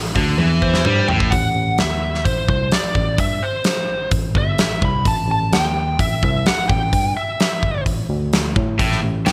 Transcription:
Already playing: A1
0.15 D2 D3, kick
0.38 E2 E3, high tom
0.62 C5, kick
0.74 snare
0.85 G2 G3, mid tom
1.08 A1 A2 G5, floor tom
1.20 kick
1.31 A1 F#5, kick, open hi-hat
1.56 A1
1.78 D#2 E5, snare, open hi-hat
2.14 snare
2.25 A1 C5, kick, open hi-hat
2.48 C2 C5, kick
2.72 A1 D5, snare, open hi-hat
2.95 A1, kick
3.18 G2 E5, kick, open hi-hat
3.43 C5
3.64 snare, open hi-hat
3.89 A1
4.11 A1, kick, open hi-hat
4.35 G1 E5, kick
4.58 A1, snare, open hi-hat
4.82 C2 B5, kick
5.05 A1 A5, kick, open hi-hat
5.29 A1 A5
5.52 D#2 G5, snare, open hi-hat
5.99 A1 E5, kick, open hi-hat
6.23 C2 E5, kick
6.46 A1 F#5, snare, open hi-hat
6.69 A1 G5, kick
6.93 G2, kick, open hi-hat
7.17 E5
7.40 snare, open hi-hat
7.63 G1, kick
7.86 A1, kick, open hi-hat
8.09 D2
8.33 snare, open hi-hat
8.56 A2, kick
8.79 A1 A2, kick, open hi-hat
8.91 snare
9.02 A1 A2
9.26 D#2 D#3 G5, snare, open hi-hat

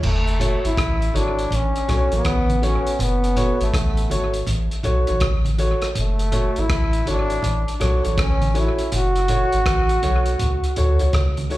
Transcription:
0.03 F#1 A3, crash, low conga
0.27 closed hi-hat
0.39 F#4 A4 C#5, closed hi-hat, low conga
0.64 G#1 E4, closed hi-hat
0.77 A1, kick, cross-stick, closed hi-hat, high conga
1.02 closed hi-hat
1.14 G#1 D4 F#4 A4 C#5, closed hi-hat, high conga
1.39 closed hi-hat
1.51 A1, closed hi-hat, low conga
1.55 C#4
1.76 closed hi-hat
1.88 B1 F#4 A4 C#5, cross-stick, closed hi-hat, low conga
2.11 A1 F#4 A4 C#5, closed hi-hat
2.16 B3
2.25 A1, kick, cross-stick, closed hi-hat, high conga
2.49 closed hi-hat, high conga
2.62 F#4 A4 C#5, closed hi-hat
2.66 C#4
2.87 closed hi-hat
2.99 F#1 B3, closed hi-hat, low conga
3.24 closed hi-hat
3.36 F#4 A4 C#5, closed hi-hat, low conga
3.61 G#1 A3, closed hi-hat
3.74 A1, kick, cross-stick, closed hi-hat, high conga
3.97 closed hi-hat
4.10 G#1 F#4 A4 C#5, closed hi-hat, high conga
4.34 closed hi-hat
4.47 A1, closed hi-hat, low conga
4.71 closed hi-hat
4.83 B1 F#4 A4 C#5, closed hi-hat, low conga
5.07 A1 F#4 A4 C#5, closed hi-hat
5.20 A1, kick, cross-stick, closed hi-hat, high conga
5.45 closed hi-hat, high conga
5.58 F#4 A4 C#5, closed hi-hat
5.82 cross-stick, closed hi-hat
5.95 F#1 A3, closed hi-hat, low conga
6.19 closed hi-hat
6.32 F#4 A4 C#5, closed hi-hat, low conga
6.56 G#1 E4, closed hi-hat
6.69 A1, kick, cross-stick, closed hi-hat, high conga
6.93 closed hi-hat
7.05 G#1 F#4 A4 C#5, closed hi-hat, high conga
7.10 D4
7.30 closed hi-hat
7.42 A1, closed hi-hat, low conga
7.68 closed hi-hat
7.80 B1 F#4 A4 C#5, cross-stick, closed hi-hat, low conga
8.04 A1 F#4 A4 C#5, closed hi-hat
8.17 A1 C#4, kick, cross-stick, closed hi-hat, high conga
8.41 closed hi-hat, high conga
8.54 F#4 A4 C#5, closed hi-hat
8.59 E4
8.78 closed hi-hat
8.92 F#1 F#4, closed hi-hat, low conga
9.16 closed hi-hat
9.28 F#4 A4 C#5, closed hi-hat, low conga
9.52 G#1, closed hi-hat
9.66 A1, kick, cross-stick, closed hi-hat, high conga
9.89 closed hi-hat
10.02 B1 F#4 A4 C#5, closed hi-hat, high conga
10.26 closed hi-hat
10.39 C#2, closed hi-hat, low conga
10.64 closed hi-hat
10.76 D2 F#4 A4 C#5, closed hi-hat, low conga
10.99 C#2 F#4 A4 C#5, closed hi-hat
11.13 C#2, kick, cross-stick, closed hi-hat, high conga
11.37 closed hi-hat, high conga
11.50 F#4 A4 C#5, open hi-hat

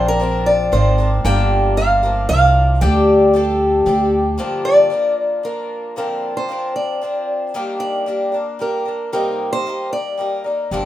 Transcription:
Already playing: A#1 A#2 D3 F3 C4 D4 A#4
0.08 A#4
0.20 F3 C4 D4 A#4
0.46 D5
0.72 G#1 F3 C4 D4 A#4 C5
0.98 F3 C4 D4 A#4
1.25 G1 G2 D3 F3 A#3 D4 A#4 G5
1.77 F3 A#3 D4 A#4 F5
2.03 F3 A#3 D4 A#4
2.29 C2 F3 A#3 D4 A#4 F5
2.81 D2 D3 G3 D4 G4 A4 G5
3.34 G3 D4 G4 A4
3.86 D2 G3 D4 G4 A4
4.38 G2 D3 F3 A#3 D4 A#4
4.65 D5
4.90 F3 A#3 D4 A#4
5.43 F3 A#3 D4 A#4
5.96 A#2 D3 F3 C4 D4 A#4
6.37 C5
6.49 F3 C4 D4 A#4
6.76 D5
7.02 F3 C4 D4 A#4
7.54 D#3 G3 A#3 D4 A#4
7.80 D5
8.06 G3 A#3 D4 A#4
8.32 A#3 D4 A#4
8.59 G3 A#3 D4 A#4
8.85 A#3 D4 A#4
9.13 C3 G3 A#3 D#4 A#4
9.53 C5
9.66 G3 A#3 D#4 A#4
9.93 D5
10.18 G3 A#3 D#4 A#4
10.44 A#3 D#4 A#4
10.71 G1 G2 D3 F3 A#3 D4 A#4

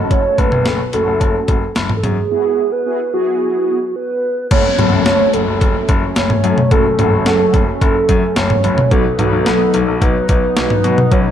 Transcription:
Already playing: F#1 A3 C#4 F#4 A4 D#5
0.11 C#5, kick, closed hi-hat
0.38 F#1 B4, kick, closed hi-hat
0.52 F#1, mid tom
0.66 F#1 A3 C#4 F#4 A4, snare, closed hi-hat
0.93 F#1 A3 C#4 F#4 A4, closed hi-hat
1.07 F#1
1.21 F#1, kick, closed hi-hat
1.48 F#1, kick, closed hi-hat
1.76 F#1, snare, closed hi-hat
1.90 mid tom
1.96 A4
2.03 F#2 G#4, closed hi-hat, mid tom
2.31 B3 E4 F#4 G#4
2.72 B4
2.86 B3 E4 F#4 G#4
3.13 B3 E4 F#4 G#4
3.96 B4
4.51 F#1 F#3 A3 C#4 F#4 A4 C#5, kick, closed hi-hat, crash, downlifter
4.78 F#1 F#3 A3 C#4 F#4 A4, closed hi-hat, mid tom
4.92 F#1
5.06 F#1 C#5, snare, closed hi-hat
5.33 F#1 A4, closed hi-hat
5.48 F#1
5.61 F#1, kick, closed hi-hat
5.89 F#1, kick, closed hi-hat
6.16 F#1 C#5, snare, closed hi-hat
6.30 mid tom
6.44 F#2 F#3 A3 C#4 F#4 A4, closed hi-hat
6.58 mid tom
6.71 F#1 F#3 A3 C#4 F#4 A4, kick, closed hi-hat
6.99 F#1 F#3 A3 C#4 F#4 A4, closed hi-hat, mid tom
7.13 F#1
7.26 F#1 A4, snare, closed hi-hat
7.54 F#1, kick, closed hi-hat
7.81 F#1 A4, kick, closed hi-hat
8.09 F#2, kick, closed hi-hat
8.36 F#1 C#5, snare, closed hi-hat
8.50 mid tom
8.64 F#1 F#3 A3 C#4 F#4 B4, closed hi-hat
8.78 mid tom
8.91 B1 F#3 B3 D#4 F#4 A4 B4, kick, closed hi-hat
9.19 B1 F#3 B3 D#4 F#4 B4, closed hi-hat, mid tom
9.33 B1
9.46 B1 A4, snare, closed hi-hat
9.74 B1, closed hi-hat
9.88 B1
10.02 B1 B4, kick, closed hi-hat
10.29 B1 B4, kick, closed hi-hat
10.57 B1, snare, closed hi-hat
10.70 mid tom
10.84 B2 F#3 B3 D#4 F#4 B4, closed hi-hat
10.98 mid tom
11.12 B1 F#3 B3 D#4 F#4 B4 C#5, kick, closed hi-hat

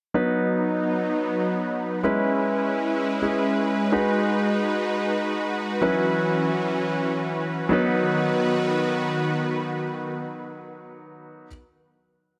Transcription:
0.14 F#3 B3 D#4 B4
2.03 G#3 C#4 E4 B4
3.22 G#3 C#4 E4 G#4
3.92 G#3 D#4 F#4 B4
5.81 E3 F#3 C#4 E4 B4
7.69 D#3 F#3 B3 D#4 F#4 B4

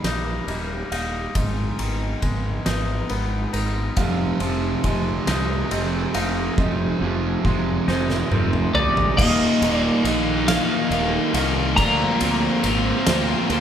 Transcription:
Already playing: D#2 D#3 G3 A#3 G4 D#5
0.04 A#1 D#4, snare, ride
0.47 D#1 A#3 D#5, ride
0.91 D#1 D#4 F5, ride
1.35 G#1 G#2 G#3 B3 D#4 F4 D#5, kick, ride
1.79 G#1 D#3, ride
2.22 G#1 G#3, kick, ride
2.66 G#1 D#4 B4, snare, ride
3.09 G#1 B3 A#4, ride
3.53 G#1 D#4 A#4, ride
3.96 F1 F2 C3 F3 C4 G#4 F5, kick, ride
4.40 F1 F2 C3 F3, ride
4.84 F1 F2 C3 F3 G#3 D#5, kick, ride
5.27 C2 F2 C3 F3 D#4, snare, ride
5.70 F1 F2 C3 F3 C4 D#5, ride
6.14 F1 F2 C3 F3 D#4 F5, ride
6.57 F1 F2 C3 F3 D#5, kick
7.01 F1 F2 C3 F3
7.44 F1 F2 C3 F3 G#3, kick
7.88 F1 F2 C3 F3 D#4 C5, snare
8.10 snare
8.31 F1 F2 C3 F3 C4 A#4, high tom
8.53 mid tom
8.74 D2 F2 C3 F3 D#4 A#4 D5, mid tom
8.97 floor tom
9.17 D#1 D#2 A#2 D#3 A#3 D#4 F4 A#4 D#5 F5, kick, crash
9.61 D#1 D#3 A#3 D#4, ride
9.74 D5
10.04 A#1 A#2 D#3 A#3 D#4 D#5, ride
10.47 D#2 A#2 D#3 A#3 D#4 F5, snare, ride
10.90 D#1 A#2 D#3 A#3 D#5, ride
10.94 D#4
11.33 C2 D#3 A#3 D#4 F5, ride
11.77 D2 A#2 F3 A#3 C4 F4 C5 D5 F5 A#5, kick, ride
12.20 D2 A#3 C4 F4, ride
12.62 G#1 F3 A#3 C4 F4, ride
13.06 D2 A#2 F3 A#3 C4 F4 C5, snare, ride
13.49 D2 F3 A#3 C4 F4 A#4, ride

